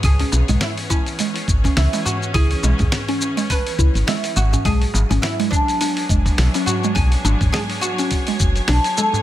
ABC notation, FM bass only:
X:1
M:4/4
L:1/16
Q:"Swing 16ths" 1/4=104
K:Bdor
V:1 name="FM bass" clef=bass
C,, z B,,, B,,, z6 G,,, z C,, z3 | C,, z B,,, B,,, z6 C,, G,,, z2 G,,, z | B,,, z G,,, G,,, z6 F,,, z B,,, z3 | B,,, z G,,, G,,, z6 F,,, z B,,, z3 |]